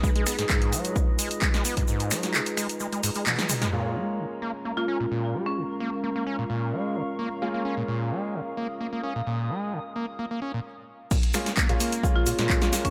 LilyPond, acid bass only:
\new Staff \with { instrumentName = "Acid bass" } { \clef bass \time 4/4 \key bes \phrygian \tempo 4 = 130 aes16 aes16 ces'16 aes,16 aes,8 ges8 ces16 r16 aes16 r16 aes16 aes16 ces'16 aes,16 | aes,8 ges8 ces16 r16 aes16 r16 aes16 aes16 aes,16 aes16 ces16 aes16 aes16 aes16 | bes,8 aes8 des16 r16 bes16 r16 bes16 bes16 des'16 bes,16 bes,8 aes8 | des16 r16 bes16 r16 bes16 bes16 des'16 bes,16 bes,8 aes8 des16 r16 bes16 r16 |
bes16 bes16 des'16 bes,16 bes,8 aes8 des16 r16 bes16 r16 bes16 bes16 des'16 bes,16 | bes,8 aes8 des16 r16 bes16 r16 bes16 bes16 des'16 bes,16 r4 | bes,16 r8. bes16 bes,16 bes8 ces16 bes,,16 bes,16 bes,16 bes,16 r8. | }